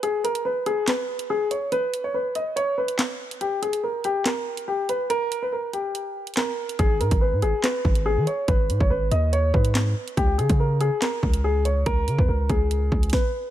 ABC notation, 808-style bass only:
X:1
M:4/4
L:1/16
Q:1/4=142
K:G#m
V:1 name="808-style bass" clef=bass
z16 | z16 | z16 | z16 |
G,,,2 G,, G,,,2 G,, G,,, z3 G,,,3 D, z2 | G,,,2 G,, G,,, G,,,2 D,,4 G,,4 z2 | C,,2 C, C,4 z3 C,,6 | C,,2 C, E,, C,,2 C,,4 C,,2 z4 |]